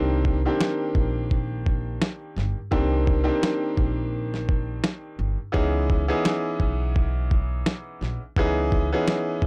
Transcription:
Already playing: C2 D#3 A#3 C4 D4 G4
0.25 kick
0.45 D#3 A#3 C4 D4 G4
0.61 snare
0.95 A#1, kick
1.31 kick
1.66 kick
2.02 snare
2.36 G1, snare
2.71 C2 D#3 A#3 C4 D4 G4, kick
3.07 kick
3.24 D#3 A#3 C4 D4 G4
3.43 snare
3.77 A#1, kick
4.34 snare
4.49 kick
4.84 snare
5.19 G1
5.52 C#2 E3 B3 C#4 D#4 G#4, kick
5.90 kick
6.08 E3 B3 C#4 D#4 G#4
6.25 snare
6.60 B1, kick
6.96 kick
7.31 kick
7.66 snare
8.01 A#1, snare
8.36 C#2 E3 B3 C#4 D#4 G#4, kick
8.72 kick
8.92 E3 B3 C#4 D#4 G#4
9.08 snare
9.42 B1, kick

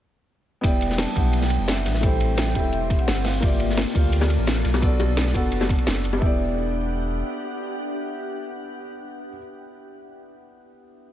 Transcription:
0.61 E1 G3 B3 D4 E4 G4 G5, kick, closed hi-hat, ride
0.66 D5
0.81 closed hi-hat, ride
0.90 snare
0.98 A5, snare, closed hi-hat, open hi-hat
1.08 ride
1.15 B1 B3 E4 G4 F#5, kick, closed hi-hat, ride
1.33 G5, closed hi-hat, ride
1.41 snare
1.50 closed hi-hat, ride
1.60 F#1
1.68 E5, snare, closed hi-hat, ride
1.85 A1 C4 G4, snare, closed hi-hat, ride
1.94 snare
2.01 A3 E4 G4 G5, kick, closed hi-hat, ride
2.06 C5
2.20 closed hi-hat, ride
2.38 snare, closed hi-hat, ride
2.46 snare
2.54 E1 A3 E4 G4 E5, kick, closed hi-hat, ride
2.73 E5, closed hi-hat
2.90 kick, closed hi-hat, ride
2.99 F#5, ride
3.08 G1, snare, closed hi-hat, ride
3.16 ride
3.24 A#3 F4 A4 F5, snare, closed hi-hat, open hi-hat
3.34 ride
3.40 G1 A#3 F4 G4 E5, kick, closed hi-hat, ride
3.45 D5
3.60 closed hi-hat, ride
3.69 snare
3.77 D5, snare, closed hi-hat, open hi-hat
3.86 ride
3.94 D2 A#3 F4 G4 F5, kick, closed hi-hat, ride
4.12 closed hi-hat, ride
4.21 snare, high bongo
4.30 closed hi-hat, ride
4.39 A1
4.47 snare, closed hi-hat, ride
4.64 B1 D4, snare, closed hi-hat, ride
4.73 snare, high bongo
4.80 B3 F#4 A4, kick, closed hi-hat, ride
4.85 D5
5.00 closed hi-hat, ride, high bongo
5.17 snare, closed hi-hat, ride
5.26 snare
5.33 F#1 B3 F#4 A4 F#5, kick, closed hi-hat, ride
5.52 closed hi-hat, ride
5.61 snare, high bongo
5.69 kick, closed hi-hat, ride
5.78 ride
5.87 F#1, snare, closed hi-hat, ride
5.96 ride
6.04 closed hi-hat, ride
6.13 high bongo
6.18 E1 B3 D4 E4 G4 F#5, kick
6.23 G4 D5

